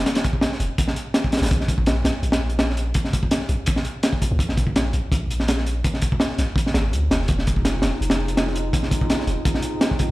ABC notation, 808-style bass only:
X:1
M:4/4
L:1/16
Q:"Swing 16ths" 1/4=166
K:Fm
V:1 name="808-style bass" clef=bass
z6 F,,, z8 A,,, | B,,,6 B,,, z B,,,8 | z6 B,,, z8 =D,, | B,,,6 B,,, z B,,,8 |
z6 B,,, z3 A,,,2 =D,,2 F,,,2 | F,,,6 F,,, z F,,,8 | z6 F,,, z8 z |]